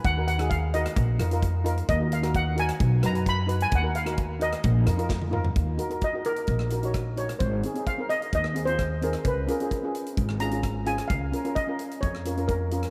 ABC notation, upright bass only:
X:1
M:4/4
L:1/8
Q:1/4=130
K:Ebm
V:1 name="Upright bass" clef=bass
E,,4 B,,, F,,3 | E,,4 =B,,, ^F,,3 | E,,4 B,,, F,,3 | E,, z3 B,,,4 |
A,,, z3 E,,4 | D,, z3 A,,,4 | D,, z3 F,,4 |]